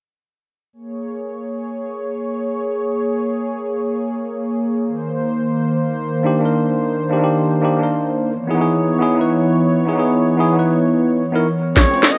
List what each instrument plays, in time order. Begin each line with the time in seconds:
0.73 analog synth pad A#3 G#4 C#5
4.87 analog synth pad D#3 C5
6.23 tine electric piano A#3 D4 D#4 G4
6.39 tine electric piano A#3 D4
6.43 tine electric piano D#4 A#4
7.10 tine electric piano A#3 D4 D#4 G4
7.17 tine electric piano A#3 D4
7.21 tine electric piano D#4 G4
7.61 tine electric piano A#3 D4 D#4 G4
7.77 tine electric piano A#3 D4
7.81 tine electric piano D#4 A#4
8.32 analog synth pad E3 B3 C#5
8.47 tine electric piano B3 D#4 E4 G#4
8.55 tine electric piano B3 D#4
8.59 tine electric piano E4 G#4
8.99 tine electric piano B3 D#4 E4 G#4
9.14 tine electric piano B3 D#4
9.19 tine electric piano E4 B4
9.85 tine electric piano B3 D#4 E4 G#4
9.93 tine electric piano B3 D#4
9.97 tine electric piano E4 G#4
10.37 tine electric piano B3 D#4 E4 G#4
10.53 tine electric piano B3 D#4
10.57 tine electric piano E4 B4
11.32 tine electric piano B3 D#4 E4 A#4
11.75 808-style bass A#1, analog synth pad G#3 A#4, tine electric piano C4 C#4 F4 G#4, flugelhorn C#5, snare, closed hi-hat
11.91 tine electric piano C4 C#4, closed hi-hat
11.95 tine electric piano F4 C5
12.03 snare
12.11 flugelhorn D#5, closed hi-hat